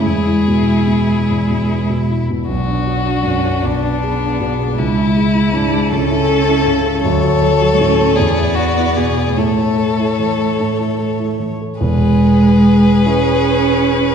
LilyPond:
<<
  \new Staff \with { instrumentName = "Violin" } { \time 6/8 \key a \major \tempo 4. = 51 e'2~ e'8. r16 | d'2. | e'4. a'4. | cis''4. d''4. |
cis''2~ cis''8. r16 | \key e \major gis'2. | }
  \new Staff \with { instrumentName = "Violin" } { \time 6/8 \key a \major gis'2~ gis'16 r8. | fis'4. d'4. | e'4. a'4. | a'4. gis'8 fis'8 gis'8 |
a'2~ a'16 r8. | \key e \major b'2. | }
  \new Staff \with { instrumentName = "Grand piano" } { \time 6/8 \key a \major e,16 e'16 b,16 e'16 b,16 e'16 e,16 b,16 e'16 b,16 e'16 b,16 | b,,16 d'16 fis'16 d'16 fis,16 fis'16 b,,16 d'16 gis'16 d'16 b,16 gis'16 | cis,16 e'16 gis'16 e'16 gis,16 gis'16 cis,16 e'16 a'16 e'16 cis16 a'16 | d,16 fis'16 a'16 fis'16 a,16 a'16 e,16 e'16 gis'16 e'16 b,16 gis'16 |
a,16 e'16 a'16 e'16 e16 a'16 a,16 e'16 a'16 e'16 e16 a'16 | \key e \major <e,, e,>4. <e' gis' b'>4. | }
  \new Staff \with { instrumentName = "Cello" } { \time 6/8 \key a \major gis2~ gis8 r8 | fis4 cis'8 b4. | gis4 d'8 cis'4. | fis4 cis'8 b4. |
a2~ a8 r8 | \key e \major gis4. cis'4. | }
>>